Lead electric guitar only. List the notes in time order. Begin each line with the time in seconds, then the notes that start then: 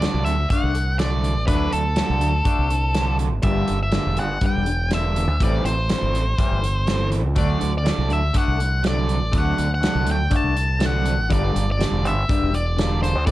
Already playing: D5
0.24 E5
0.50 F#5
0.99 D5
1.47 B4
1.73 A4
3.43 E5
3.83 E5
4.20 F#5
4.46 G5
4.94 E5
5.43 D5
5.66 C5
7.38 D5
7.78 D5
8.13 E5
8.38 F#5
8.87 D5
9.38 F#5
9.74 F#5
10.11 G5
10.36 A5
10.86 F#5
11.32 D5
11.71 D5
12.07 E5
12.55 D5
13.03 C5
13.26 D5